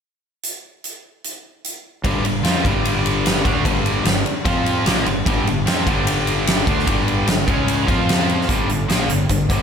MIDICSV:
0, 0, Header, 1, 4, 480
1, 0, Start_track
1, 0, Key_signature, -2, "minor"
1, 0, Tempo, 402955
1, 516, Time_signature, 4, 2, 24, 8
1, 11462, End_track
2, 0, Start_track
2, 0, Title_t, "Overdriven electric guitar"
2, 0, Program_c, 0, 29
2, 2430, Note_on_c, 0, 43, 90
2, 2434, Note_on_c, 0, 50, 87
2, 2438, Note_on_c, 0, 55, 106
2, 2654, Note_off_c, 0, 43, 0
2, 2657, Note_off_c, 0, 50, 0
2, 2665, Note_off_c, 0, 55, 0
2, 2668, Note_on_c, 0, 43, 67
2, 2671, Note_on_c, 0, 50, 69
2, 2859, Note_off_c, 0, 43, 0
2, 2860, Note_off_c, 0, 50, 0
2, 2894, Note_on_c, 0, 53, 85
2, 2904, Note_on_c, 0, 60, 101
2, 2910, Note_on_c, 0, 65, 80
2, 3132, Note_off_c, 0, 53, 0
2, 3137, Note_off_c, 0, 60, 0
2, 3140, Note_off_c, 0, 65, 0
2, 3144, Note_on_c, 0, 43, 79
2, 3147, Note_on_c, 0, 50, 98
2, 3153, Note_on_c, 0, 55, 98
2, 4081, Note_off_c, 0, 50, 0
2, 4095, Note_off_c, 0, 43, 0
2, 4095, Note_on_c, 0, 50, 91
2, 4098, Note_off_c, 0, 55, 0
2, 4103, Note_on_c, 0, 57, 98
2, 4115, Note_on_c, 0, 62, 87
2, 4331, Note_off_c, 0, 50, 0
2, 4335, Note_off_c, 0, 57, 0
2, 4337, Note_on_c, 0, 43, 89
2, 4341, Note_off_c, 0, 62, 0
2, 4345, Note_on_c, 0, 50, 103
2, 4353, Note_on_c, 0, 55, 107
2, 4807, Note_off_c, 0, 43, 0
2, 4807, Note_off_c, 0, 50, 0
2, 4819, Note_off_c, 0, 55, 0
2, 4821, Note_on_c, 0, 43, 56
2, 4821, Note_on_c, 0, 50, 65
2, 5013, Note_off_c, 0, 43, 0
2, 5013, Note_off_c, 0, 50, 0
2, 5298, Note_on_c, 0, 53, 86
2, 5304, Note_on_c, 0, 60, 88
2, 5314, Note_on_c, 0, 65, 95
2, 5772, Note_off_c, 0, 53, 0
2, 5774, Note_off_c, 0, 60, 0
2, 5780, Note_off_c, 0, 65, 0
2, 5785, Note_on_c, 0, 46, 76
2, 5795, Note_on_c, 0, 53, 99
2, 5796, Note_on_c, 0, 58, 101
2, 6015, Note_off_c, 0, 46, 0
2, 6020, Note_off_c, 0, 53, 0
2, 6020, Note_off_c, 0, 58, 0
2, 6031, Note_on_c, 0, 43, 65
2, 6038, Note_on_c, 0, 50, 64
2, 6218, Note_off_c, 0, 43, 0
2, 6221, Note_off_c, 0, 50, 0
2, 6273, Note_on_c, 0, 43, 95
2, 6281, Note_on_c, 0, 50, 103
2, 6285, Note_on_c, 0, 55, 106
2, 6499, Note_off_c, 0, 43, 0
2, 6503, Note_off_c, 0, 50, 0
2, 6505, Note_off_c, 0, 55, 0
2, 6521, Note_on_c, 0, 43, 69
2, 6528, Note_on_c, 0, 50, 75
2, 6702, Note_off_c, 0, 43, 0
2, 6706, Note_off_c, 0, 50, 0
2, 6752, Note_on_c, 0, 53, 92
2, 6759, Note_on_c, 0, 60, 87
2, 6760, Note_on_c, 0, 65, 89
2, 6979, Note_off_c, 0, 53, 0
2, 6983, Note_off_c, 0, 60, 0
2, 6983, Note_off_c, 0, 65, 0
2, 6999, Note_on_c, 0, 43, 92
2, 7005, Note_on_c, 0, 50, 89
2, 7014, Note_on_c, 0, 55, 92
2, 7938, Note_off_c, 0, 50, 0
2, 7944, Note_off_c, 0, 43, 0
2, 7950, Note_off_c, 0, 55, 0
2, 7952, Note_on_c, 0, 50, 79
2, 7955, Note_on_c, 0, 57, 90
2, 7962, Note_on_c, 0, 62, 99
2, 8180, Note_off_c, 0, 50, 0
2, 8181, Note_off_c, 0, 57, 0
2, 8182, Note_on_c, 0, 43, 94
2, 8185, Note_off_c, 0, 62, 0
2, 8194, Note_on_c, 0, 50, 89
2, 8198, Note_on_c, 0, 55, 113
2, 8656, Note_off_c, 0, 43, 0
2, 8662, Note_off_c, 0, 50, 0
2, 8664, Note_off_c, 0, 55, 0
2, 8672, Note_on_c, 0, 43, 52
2, 8684, Note_on_c, 0, 50, 63
2, 8860, Note_off_c, 0, 43, 0
2, 8866, Note_off_c, 0, 50, 0
2, 8897, Note_on_c, 0, 49, 91
2, 8907, Note_on_c, 0, 56, 105
2, 8910, Note_on_c, 0, 61, 100
2, 9363, Note_off_c, 0, 49, 0
2, 9368, Note_on_c, 0, 53, 87
2, 9372, Note_off_c, 0, 56, 0
2, 9377, Note_off_c, 0, 61, 0
2, 9377, Note_on_c, 0, 60, 94
2, 9382, Note_on_c, 0, 65, 84
2, 10093, Note_off_c, 0, 53, 0
2, 10098, Note_off_c, 0, 60, 0
2, 10099, Note_on_c, 0, 43, 91
2, 10100, Note_off_c, 0, 65, 0
2, 10107, Note_on_c, 0, 50, 95
2, 10118, Note_on_c, 0, 55, 93
2, 10321, Note_off_c, 0, 43, 0
2, 10324, Note_off_c, 0, 50, 0
2, 10335, Note_on_c, 0, 43, 63
2, 10338, Note_on_c, 0, 50, 59
2, 10348, Note_off_c, 0, 55, 0
2, 10536, Note_off_c, 0, 43, 0
2, 10538, Note_off_c, 0, 50, 0
2, 10583, Note_on_c, 0, 46, 72
2, 10592, Note_on_c, 0, 53, 76
2, 10600, Note_on_c, 0, 58, 86
2, 10822, Note_off_c, 0, 46, 0
2, 10827, Note_off_c, 0, 53, 0
2, 10831, Note_off_c, 0, 58, 0
2, 10832, Note_on_c, 0, 43, 68
2, 10845, Note_on_c, 0, 50, 72
2, 11027, Note_off_c, 0, 43, 0
2, 11033, Note_off_c, 0, 50, 0
2, 11078, Note_on_c, 0, 43, 56
2, 11084, Note_on_c, 0, 50, 58
2, 11271, Note_off_c, 0, 43, 0
2, 11274, Note_off_c, 0, 50, 0
2, 11304, Note_on_c, 0, 43, 85
2, 11307, Note_on_c, 0, 50, 93
2, 11321, Note_on_c, 0, 55, 88
2, 11462, Note_off_c, 0, 43, 0
2, 11462, Note_off_c, 0, 50, 0
2, 11462, Note_off_c, 0, 55, 0
2, 11462, End_track
3, 0, Start_track
3, 0, Title_t, "Fingered electric bass"
3, 0, Program_c, 1, 33
3, 2429, Note_on_c, 1, 31, 96
3, 2651, Note_off_c, 1, 31, 0
3, 2677, Note_on_c, 1, 31, 74
3, 2894, Note_off_c, 1, 31, 0
3, 2910, Note_on_c, 1, 41, 94
3, 3130, Note_off_c, 1, 41, 0
3, 3152, Note_on_c, 1, 31, 91
3, 4058, Note_off_c, 1, 31, 0
3, 4112, Note_on_c, 1, 38, 87
3, 4330, Note_off_c, 1, 38, 0
3, 4354, Note_on_c, 1, 31, 90
3, 4794, Note_off_c, 1, 31, 0
3, 4824, Note_on_c, 1, 31, 74
3, 5046, Note_off_c, 1, 31, 0
3, 5308, Note_on_c, 1, 41, 97
3, 5750, Note_off_c, 1, 41, 0
3, 5785, Note_on_c, 1, 34, 85
3, 6006, Note_off_c, 1, 34, 0
3, 6027, Note_on_c, 1, 31, 86
3, 6247, Note_off_c, 1, 31, 0
3, 6272, Note_on_c, 1, 31, 88
3, 6483, Note_off_c, 1, 31, 0
3, 6490, Note_on_c, 1, 31, 81
3, 6718, Note_off_c, 1, 31, 0
3, 6731, Note_on_c, 1, 41, 83
3, 6959, Note_off_c, 1, 41, 0
3, 6993, Note_on_c, 1, 31, 94
3, 7900, Note_off_c, 1, 31, 0
3, 7946, Note_on_c, 1, 38, 97
3, 8167, Note_off_c, 1, 38, 0
3, 8193, Note_on_c, 1, 31, 91
3, 8636, Note_off_c, 1, 31, 0
3, 8652, Note_on_c, 1, 31, 71
3, 8881, Note_off_c, 1, 31, 0
3, 8902, Note_on_c, 1, 37, 86
3, 9351, Note_off_c, 1, 37, 0
3, 9396, Note_on_c, 1, 41, 87
3, 10067, Note_off_c, 1, 41, 0
3, 10117, Note_on_c, 1, 31, 88
3, 10338, Note_off_c, 1, 31, 0
3, 10352, Note_on_c, 1, 31, 78
3, 10577, Note_off_c, 1, 31, 0
3, 10595, Note_on_c, 1, 34, 83
3, 10814, Note_off_c, 1, 34, 0
3, 10821, Note_on_c, 1, 31, 78
3, 11052, Note_off_c, 1, 31, 0
3, 11070, Note_on_c, 1, 31, 77
3, 11298, Note_off_c, 1, 31, 0
3, 11311, Note_on_c, 1, 31, 88
3, 11462, Note_off_c, 1, 31, 0
3, 11462, End_track
4, 0, Start_track
4, 0, Title_t, "Drums"
4, 516, Note_on_c, 9, 42, 58
4, 635, Note_off_c, 9, 42, 0
4, 1000, Note_on_c, 9, 42, 55
4, 1119, Note_off_c, 9, 42, 0
4, 1480, Note_on_c, 9, 42, 57
4, 1599, Note_off_c, 9, 42, 0
4, 1959, Note_on_c, 9, 42, 58
4, 2078, Note_off_c, 9, 42, 0
4, 2435, Note_on_c, 9, 36, 111
4, 2437, Note_on_c, 9, 51, 90
4, 2554, Note_off_c, 9, 36, 0
4, 2556, Note_off_c, 9, 51, 0
4, 2676, Note_on_c, 9, 51, 72
4, 2795, Note_off_c, 9, 51, 0
4, 2912, Note_on_c, 9, 51, 91
4, 2927, Note_on_c, 9, 38, 115
4, 3032, Note_off_c, 9, 51, 0
4, 3046, Note_off_c, 9, 38, 0
4, 3155, Note_on_c, 9, 36, 109
4, 3164, Note_on_c, 9, 51, 74
4, 3274, Note_off_c, 9, 36, 0
4, 3283, Note_off_c, 9, 51, 0
4, 3399, Note_on_c, 9, 51, 98
4, 3518, Note_off_c, 9, 51, 0
4, 3641, Note_on_c, 9, 51, 71
4, 3760, Note_off_c, 9, 51, 0
4, 3879, Note_on_c, 9, 51, 100
4, 3894, Note_on_c, 9, 38, 116
4, 3998, Note_off_c, 9, 51, 0
4, 4013, Note_off_c, 9, 38, 0
4, 4111, Note_on_c, 9, 36, 94
4, 4115, Note_on_c, 9, 51, 72
4, 4230, Note_off_c, 9, 36, 0
4, 4234, Note_off_c, 9, 51, 0
4, 4350, Note_on_c, 9, 36, 104
4, 4354, Note_on_c, 9, 51, 95
4, 4469, Note_off_c, 9, 36, 0
4, 4473, Note_off_c, 9, 51, 0
4, 4594, Note_on_c, 9, 51, 71
4, 4713, Note_off_c, 9, 51, 0
4, 4828, Note_on_c, 9, 51, 91
4, 4843, Note_on_c, 9, 38, 104
4, 4948, Note_off_c, 9, 51, 0
4, 4962, Note_off_c, 9, 38, 0
4, 5072, Note_on_c, 9, 51, 66
4, 5191, Note_off_c, 9, 51, 0
4, 5306, Note_on_c, 9, 36, 106
4, 5309, Note_on_c, 9, 51, 92
4, 5425, Note_off_c, 9, 36, 0
4, 5428, Note_off_c, 9, 51, 0
4, 5554, Note_on_c, 9, 51, 71
4, 5673, Note_off_c, 9, 51, 0
4, 5789, Note_on_c, 9, 51, 89
4, 5804, Note_on_c, 9, 38, 107
4, 5908, Note_off_c, 9, 51, 0
4, 5923, Note_off_c, 9, 38, 0
4, 6031, Note_on_c, 9, 51, 72
4, 6150, Note_off_c, 9, 51, 0
4, 6269, Note_on_c, 9, 36, 110
4, 6275, Note_on_c, 9, 51, 94
4, 6388, Note_off_c, 9, 36, 0
4, 6394, Note_off_c, 9, 51, 0
4, 6519, Note_on_c, 9, 51, 64
4, 6638, Note_off_c, 9, 51, 0
4, 6753, Note_on_c, 9, 51, 85
4, 6768, Note_on_c, 9, 38, 104
4, 6872, Note_off_c, 9, 51, 0
4, 6887, Note_off_c, 9, 38, 0
4, 6989, Note_on_c, 9, 36, 99
4, 6992, Note_on_c, 9, 51, 76
4, 7108, Note_off_c, 9, 36, 0
4, 7111, Note_off_c, 9, 51, 0
4, 7229, Note_on_c, 9, 51, 101
4, 7348, Note_off_c, 9, 51, 0
4, 7470, Note_on_c, 9, 51, 71
4, 7589, Note_off_c, 9, 51, 0
4, 7711, Note_on_c, 9, 51, 111
4, 7725, Note_on_c, 9, 38, 112
4, 7830, Note_off_c, 9, 51, 0
4, 7844, Note_off_c, 9, 38, 0
4, 7947, Note_on_c, 9, 36, 100
4, 7950, Note_on_c, 9, 51, 73
4, 8066, Note_off_c, 9, 36, 0
4, 8069, Note_off_c, 9, 51, 0
4, 8090, Note_on_c, 9, 38, 33
4, 8188, Note_on_c, 9, 36, 104
4, 8188, Note_on_c, 9, 51, 98
4, 8209, Note_off_c, 9, 38, 0
4, 8307, Note_off_c, 9, 36, 0
4, 8307, Note_off_c, 9, 51, 0
4, 8431, Note_on_c, 9, 51, 63
4, 8550, Note_off_c, 9, 51, 0
4, 8666, Note_on_c, 9, 51, 89
4, 8680, Note_on_c, 9, 38, 114
4, 8785, Note_off_c, 9, 51, 0
4, 8799, Note_off_c, 9, 38, 0
4, 8908, Note_on_c, 9, 36, 109
4, 8912, Note_on_c, 9, 51, 73
4, 9027, Note_off_c, 9, 36, 0
4, 9032, Note_off_c, 9, 51, 0
4, 9149, Note_on_c, 9, 51, 87
4, 9269, Note_off_c, 9, 51, 0
4, 9391, Note_on_c, 9, 36, 102
4, 9395, Note_on_c, 9, 51, 64
4, 9510, Note_off_c, 9, 36, 0
4, 9514, Note_off_c, 9, 51, 0
4, 9638, Note_on_c, 9, 51, 91
4, 9652, Note_on_c, 9, 38, 113
4, 9757, Note_off_c, 9, 51, 0
4, 9771, Note_off_c, 9, 38, 0
4, 9880, Note_on_c, 9, 51, 61
4, 10000, Note_off_c, 9, 51, 0
4, 10023, Note_on_c, 9, 38, 33
4, 10113, Note_on_c, 9, 36, 102
4, 10113, Note_on_c, 9, 42, 84
4, 10142, Note_off_c, 9, 38, 0
4, 10232, Note_off_c, 9, 36, 0
4, 10232, Note_off_c, 9, 42, 0
4, 10356, Note_on_c, 9, 42, 59
4, 10475, Note_off_c, 9, 42, 0
4, 10595, Note_on_c, 9, 42, 87
4, 10609, Note_on_c, 9, 38, 90
4, 10714, Note_off_c, 9, 42, 0
4, 10728, Note_off_c, 9, 38, 0
4, 10834, Note_on_c, 9, 42, 68
4, 10953, Note_off_c, 9, 42, 0
4, 11068, Note_on_c, 9, 42, 88
4, 11073, Note_on_c, 9, 36, 81
4, 11187, Note_off_c, 9, 42, 0
4, 11192, Note_off_c, 9, 36, 0
4, 11312, Note_on_c, 9, 42, 68
4, 11314, Note_on_c, 9, 36, 100
4, 11431, Note_off_c, 9, 42, 0
4, 11433, Note_off_c, 9, 36, 0
4, 11462, End_track
0, 0, End_of_file